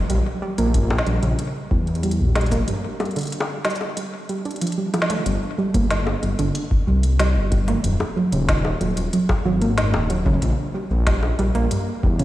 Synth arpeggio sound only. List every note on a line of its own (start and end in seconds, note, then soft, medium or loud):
0.10 0.18 G3 medium
0.42 0.55 G3 loud
0.58 0.71 A#3 loud
0.74 0.87 G2 medium
1.07 1.22 G3 medium
1.23 1.36 C#3 loud
1.71 1.84 G3 medium
2.03 2.11 G3 medium
2.36 2.49 G3 loud
2.52 2.65 A#3 loud
2.68 2.81 G2 medium
3.00 3.15 G3 medium
3.16 3.29 D3 loud
3.65 3.78 G3 medium
3.97 4.05 G3 medium
4.29 4.45 G3 medium
4.45 4.58 D4 medium
4.62 4.69 F3 medium
4.78 4.93 G3 medium
4.94 5.09 F3 loud
5.10 5.25 A3 loud
5.26 5.34 G3 medium
5.58 5.71 G3 loud
5.74 5.87 A#3 loud
5.91 6.03 G2 medium
6.23 6.38 G3 medium
6.39 6.52 D3 loud
6.87 7.00 G3 medium
7.20 7.27 G3 medium
7.52 7.65 G3 loud
7.68 7.81 A#3 loud
7.84 7.97 F#2 medium
8.16 8.32 F#3 medium
8.32 8.45 C#3 loud
8.81 8.94 F#3 medium
9.13 9.21 F#3 medium
9.45 9.58 F#3 loud
9.61 9.74 A#3 loud
9.78 9.91 F#2 medium
10.10 10.25 F#3 medium
10.26 10.39 C#3 loud
10.74 10.87 G3 medium
11.07 11.14 G3 medium
11.39 11.52 G3 loud
11.55 11.68 A#3 loud
11.71 11.84 G2 medium
12.03 12.19 G3 medium
12.20 12.24 C#3 loud